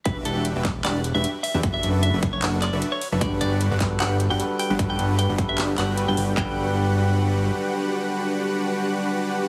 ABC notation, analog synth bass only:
X:1
M:4/4
L:1/16
Q:"Swing 16ths" 1/4=152
K:G
V:1 name="Analog synth bass" clef=bass
E,,,2 E,,,3 E,,,3 E,,,3 E,,, z3 E,, | F,,,2 F,,,3 F,,,3 F,,,3 F,,, z3 F,,, | G,,,2 G,,,3 G,,,3 G,,,3 G,,, z3 G,,, | G,,,2 G,,,3 G,,,3 G,,,2 G,,,3 G,,, G,,,2 |
G,,,12 z4 | z16 |]